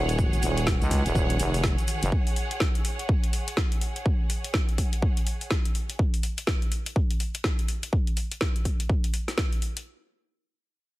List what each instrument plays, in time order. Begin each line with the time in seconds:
Already playing: fm bass D#1, analog synth pad D#3 D#4 F#4 A#4, string section G#4 C#5 F#5
0.09 closed hi-hat, cabasa
0.19 kick, cabasa
0.33 closed hi-hat, cabasa
0.43 fm bass D#1, open hi-hat, cabasa
0.58 closed hi-hat, cabasa
0.67 kick, snare, cabasa
0.82 fm bass C#2, closed hi-hat, cabasa
0.91 kick, open hi-hat, cabasa
1.06 fm bass D#1, closed hi-hat, cabasa
1.15 fm bass D#1, kick, cabasa
1.30 closed hi-hat
1.40 fm bass F1, open hi-hat, cabasa
1.54 open hi-hat, cabasa
1.64 kick, snare, cabasa
1.78 closed hi-hat, cabasa
1.88 open hi-hat, cabasa
2.03 fm bass F#1, closed hi-hat, cabasa
2.12 kick
2.27 open hi-hat
2.36 open hi-hat
2.51 closed hi-hat
2.60 kick, snare
2.75 closed hi-hat
2.85 open hi-hat
2.99 closed hi-hat
3.09 kick
3.24 closed hi-hat
3.33 open hi-hat
3.48 closed hi-hat
3.57 kick, snare
3.72 closed hi-hat
3.81 open hi-hat
3.96 closed hi-hat
4.06 kick
4.30 open hi-hat
4.44 closed hi-hat
4.54 kick, snare
4.69 closed hi-hat
4.78 kick, open hi-hat
4.93 closed hi-hat
5.02 kick
5.17 closed hi-hat
5.27 open hi-hat
5.41 open hi-hat
5.51 kick, snare
5.65 closed hi-hat
5.75 open hi-hat
5.90 closed hi-hat
5.99 kick
6.14 open hi-hat
6.23 open hi-hat
6.38 closed hi-hat
6.47 kick, snare
6.62 closed hi-hat
6.72 open hi-hat
6.86 closed hi-hat
6.96 kick
7.11 closed hi-hat
7.20 open hi-hat
7.35 closed hi-hat
7.44 kick, snare
7.59 closed hi-hat
7.68 open hi-hat
7.83 closed hi-hat
7.93 kick
8.07 closed hi-hat
8.17 open hi-hat
8.32 closed hi-hat
8.41 kick, snare
8.56 closed hi-hat
8.65 kick, open hi-hat
8.80 closed hi-hat
8.89 kick
9.04 closed hi-hat
9.14 open hi-hat
9.28 snare, open hi-hat
9.38 kick, snare
9.53 closed hi-hat
9.62 open hi-hat
9.77 closed hi-hat